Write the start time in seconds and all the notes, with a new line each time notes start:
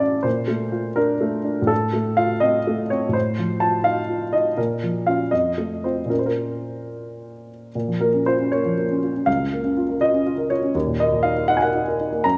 Already playing: A2 E3 E4 A4 E5 F5
0.00 C#4 D5
0.23 A#2 C5
0.48 A3
0.72 F4
0.96 D4 A#4
1.21 A3
1.44 D4
1.62 A2
1.67 A4
1.93 A3
2.17 F4 F5
2.40 C4 D#5
2.67 A3
2.90 C4 C#5
3.09 A2
3.13 C5
3.38 F3
3.60 F4 A5
3.84 D#4 F5
4.09 F4
4.33 D#4 D#5
4.57 A#2 A#4
4.83 F3
5.07 C#4 F4 F5
5.31 F2 D#5
5.58 A3
5.84 C4 F4 C5
6.06 A#2 A#3 C#4 F4
6.10 A#4
6.19 C5
6.26 A#4
7.75 A#2
7.88 F3
8.01 A#3 A#4
8.14 C#4
8.26 F4 C5
8.41 C#4
8.52 A#3 C#5
8.66 F3
8.78 A#3
8.91 C#4
9.03 F4
9.15 C#4
9.26 C#2 F5
9.39 C#3
9.53 A#3
9.64 C#4
9.77 F4
9.89 A#4
10.01 F4 D#5
10.14 C#4
10.26 F4
10.38 A#4
10.50 F4 C#5
10.63 C#4
10.75 D#2
10.87 A#2
11.00 A#3 D#5
11.12 A#2
11.23 D#4 F5
11.36 A#4
11.48 D#4 F#5
11.57 G#5
11.62 A#4 F#5
11.75 D#4
11.88 A#4
12.01 D#4
12.12 A#3
12.24 F#2 A#5